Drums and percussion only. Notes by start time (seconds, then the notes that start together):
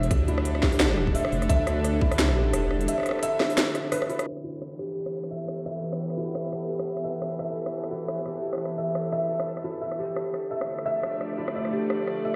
0.03 closed hi-hat
0.11 kick, cross-stick, closed hi-hat
0.28 closed hi-hat
0.38 cross-stick
0.45 closed hi-hat
0.55 cross-stick
0.63 kick, snare
0.72 open hi-hat
0.80 cross-stick, snare, closed hi-hat
0.97 cross-stick
1.07 kick
1.15 open hi-hat
1.25 cross-stick
1.32 open hi-hat
1.42 cross-stick, closed hi-hat
1.49 kick, closed hi-hat
1.67 cross-stick, closed hi-hat
1.84 cross-stick, closed hi-hat
2.01 kick
2.11 cross-stick, open hi-hat
2.19 snare, closed hi-hat
2.29 cross-stick
2.53 cross-stick, closed hi-hat
2.71 cross-stick
2.81 closed hi-hat
2.88 closed hi-hat
2.98 cross-stick
3.00 cross-stick
3.03 cross-stick
3.06 cross-stick, closed hi-hat
3.09 cross-stick
3.11 cross-stick
3.19 cross-stick, closed hi-hat
3.40 cross-stick, snare
3.50 open hi-hat
3.58 cross-stick, snare, closed hi-hat
3.75 cross-stick, closed hi-hat
3.92 cross-stick, open hi-hat
4.02 cross-stick
4.10 open hi-hat
4.19 cross-stick, closed hi-hat
4.37 cross-stick
4.62 cross-stick
4.79 cross-stick
5.06 cross-stick
5.23 cross-stick
5.48 cross-stick
5.66 cross-stick
5.93 cross-stick
6.10 cross-stick
6.35 cross-stick
6.53 cross-stick
6.79 cross-stick
6.97 cross-stick
7.22 cross-stick
7.39 cross-stick
7.66 cross-stick
7.84 cross-stick
8.08 cross-stick
8.26 cross-stick
8.53 cross-stick
8.55 cross-stick
8.58 cross-stick
8.65 cross-stick
8.95 cross-stick
9.12 cross-stick
9.40 cross-stick
9.57 cross-stick
9.92 cross-stick
10.16 cross-stick
10.34 cross-stick
10.61 cross-stick
10.79 cross-stick
11.03 cross-stick
11.21 cross-stick
11.48 cross-stick
11.65 cross-stick
11.90 cross-stick
12.07 cross-stick